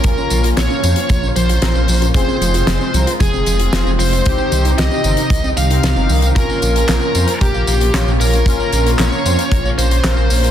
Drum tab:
HH |x-xxx-xxx-xxx-ox|x-xxx-xxx-xxx-ox|x-xxx-xxx-xxx-ox|x-xxx-xxx-xxx-ox|
TB |xxxxxxxxxxxxxxxx|xxxxxxxxxxxxxxxx|xxxxxxxxxxxxxxxx|xxxxxxxxxxxxxxxx|
CP |----------------|----------------|----------------|----x-------x---|
SD |----o-------o---|----o-------o---|----o-------o---|----o-------o---|
BD |o-------o-------|o-------o-------|o-------o-------|o-------o-------|

HH |x-xxx-xxx-xxx-ox|
TB |xxxxxxxxxxxxxxxx|
CP |----x-------x---|
SD |----o-------o---|
BD |o-------o-------|